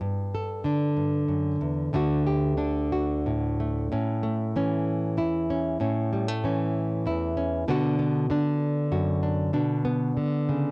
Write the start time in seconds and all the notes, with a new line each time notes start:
0.01 G2
0.34 A4
0.64 D3 D4
0.97 G2
1.28 F#2
1.61 E2
1.93 D2 D3 A3 D4 F#4
2.27 G4
2.57 D3 D4
2.92 F#4
3.26 A2
3.60 A3
3.92 A2 C#4
4.23 A3
4.56 E3 C#4
5.17 E2 E4
5.50 C#4
5.80 A2 C#4
6.13 G3
6.28 A3
6.44 E3 C#4
7.06 E2 E4
7.37 C#4
7.68 B2 D3 B3 D4 F#4
7.99 B3
8.30 D3 D4
8.92 F#2 F#4
9.23 D4
9.53 B2 D4
9.85 B3
10.17 D3
10.49 C#3